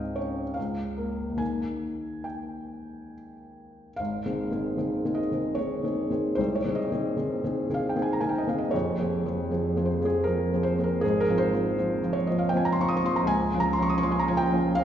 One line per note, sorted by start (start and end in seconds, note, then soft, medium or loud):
0.00 0.53 C#2 soft
0.00 0.59 G#2 soft
0.00 0.41 C4 soft
0.00 0.16 D#5 medium
0.00 0.54 F5 medium
0.00 0.59 G5 medium
0.16 0.57 C#4 soft
0.16 0.56 C#5 medium
0.54 1.38 C#2 soft
0.54 1.39 F5 medium
0.98 1.36 A#3 soft
0.98 1.36 A#4 soft
1.30 3.90 D#2 soft
1.37 3.93 D#3 soft
1.37 3.94 A#3 soft
1.37 3.95 A#4 soft
1.37 2.25 G#5 medium
2.24 3.13 G5 medium
3.96 4.25 G#1 medium
3.96 5.17 F5 medium
4.26 4.49 D#3 soft
4.26 4.49 C4 soft
4.26 4.49 G#4 soft
4.51 4.75 D#3 soft
4.51 4.76 C4 soft
4.51 4.76 G#4 soft
4.77 5.02 D#3 soft
4.77 5.02 C4 soft
4.77 5.02 G#4 soft
5.05 5.29 D#3 soft
5.05 5.29 C4 soft
5.05 5.30 G#4 soft
5.15 5.56 D#5 medium
5.32 5.56 D#3 soft
5.32 5.56 C4 soft
5.32 5.56 G#4 soft
5.55 5.82 D#3 soft
5.55 5.82 C4 soft
5.55 5.82 G#4 soft
5.55 6.37 C#5 medium
5.83 6.08 D#3 soft
5.83 6.09 C4 soft
5.83 6.09 G#4 soft
6.10 6.35 D#3 soft
6.10 6.36 C4 soft
6.10 6.36 G#4 soft
6.35 6.64 C2 medium
6.35 6.57 C5 medium
6.55 6.77 C#5 medium
6.65 6.89 D#3 soft
6.65 6.89 C4 soft
6.65 6.89 G#4 soft
6.75 7.74 D#5 medium
6.92 7.15 D#3 soft
6.92 7.15 C4 soft
6.92 7.15 G#4 soft
7.17 7.40 D#3 soft
7.17 7.41 C4 soft
7.17 7.41 G#4 soft
7.44 7.67 D#3 soft
7.44 7.67 C4 soft
7.44 7.67 G#4 soft
7.70 7.93 D#3 soft
7.70 7.93 C4 soft
7.70 7.93 G#4 soft
7.74 7.91 F5 medium
7.89 8.03 G5 medium
7.96 8.19 D#3 soft
7.96 8.19 C4 soft
7.96 8.20 G#4 soft
8.02 8.13 G#5 medium
8.13 8.22 A#5 medium
8.21 8.45 D#3 soft
8.21 8.45 C4 soft
8.21 8.46 G#4 soft
8.21 8.30 G#5 medium
8.29 8.39 G5 medium
8.38 8.49 D#5 medium
8.47 8.71 D#3 soft
8.47 8.71 C4 soft
8.47 8.71 G#4 soft
8.47 8.61 F5 medium
8.58 8.72 D#5 medium
8.71 8.98 F1 soft
8.71 8.99 F2 medium
8.71 9.87 C#5 medium
8.99 9.23 F3 soft
8.99 9.23 C4 soft
8.99 9.23 G#4 soft
9.26 9.48 F3 soft
9.26 9.49 C4 soft
9.26 9.49 G#4 soft
9.51 9.74 F3 soft
9.51 9.74 C4 soft
9.51 9.74 G#4 soft
9.76 9.99 F3 soft
9.76 9.99 C4 soft
9.76 9.99 G#4 medium
9.85 10.06 C5 medium
10.01 10.24 F3 soft
10.01 10.24 C4 soft
10.01 10.04 G#4 soft
10.01 10.25 G#4 medium
10.24 10.50 F3 soft
10.24 10.50 C4 soft
10.24 10.50 G#4 soft
10.24 10.63 A#4 medium
10.53 10.76 F3 soft
10.53 10.76 C4 soft
10.53 10.76 G#4 soft
10.63 10.83 C5 medium
10.79 11.01 F3 medium
10.79 11.01 C4 medium
10.79 11.00 G#4 medium
10.84 11.03 A#4 medium
11.01 11.27 G#1 medium
11.01 11.28 G#2 medium
11.01 11.21 G#4 medium
11.20 11.40 A#4 medium
11.29 11.51 F3 soft
11.29 11.51 C4 medium
11.29 11.51 F4 medium
11.38 12.14 C5 medium
11.53 11.75 F3 soft
11.53 11.76 C4 soft
11.53 11.76 F4 medium
11.78 12.00 F3 soft
11.78 12.00 C4 soft
11.78 12.01 F4 soft
12.03 12.25 F3 medium
12.03 12.26 C4 medium
12.03 12.26 F4 medium
12.13 12.29 C#5 medium
12.27 12.51 F3 medium
12.27 12.51 C4 medium
12.27 12.51 F4 medium
12.27 12.40 D#5 medium
12.39 12.50 F5 medium
12.49 12.59 G5 medium
12.53 12.76 F3 soft
12.53 12.76 C4 medium
12.53 12.77 F4 medium
12.53 12.66 G#5 medium
12.65 12.74 A#5 medium
12.72 12.81 C6 medium
12.79 13.02 F3 medium
12.79 13.02 C4 medium
12.79 13.02 F4 medium
12.79 12.90 C#6 medium
12.88 12.98 D#6 medium
12.97 13.07 C#6 medium
13.04 13.26 F3 medium
13.04 13.27 C4 medium
13.04 13.27 F4 medium
13.04 13.17 C6 medium
13.16 13.27 A#5 medium
13.23 13.50 C#2 medium
13.27 13.62 G#5 loud
13.54 13.76 F3 medium
13.54 13.77 C#4 medium
13.54 13.77 F4 medium
13.60 13.74 A#5 medium
13.73 13.84 C6 medium
13.78 14.01 F3 medium
13.78 14.01 C#4 medium
13.78 14.01 F4 medium
13.82 13.92 C#6 medium
13.89 13.98 D#6 medium
13.98 14.06 C#6 medium
14.03 14.26 F3 medium
14.03 14.26 C#4 medium
14.03 14.26 F4 medium
14.03 14.12 C6 medium
14.11 14.21 G#5 medium
14.19 14.30 A#5 medium
14.28 14.51 F3 medium
14.28 14.51 C#4 medium
14.28 14.52 F4 medium
14.28 14.39 G#5 medium
14.37 14.77 G5 loud
14.52 14.75 F3 medium
14.52 14.76 C#4 medium
14.52 14.76 F4 medium
14.75 14.84 F3 medium
14.75 14.84 C#4 medium
14.75 14.84 F4 medium
14.75 14.84 F5 loud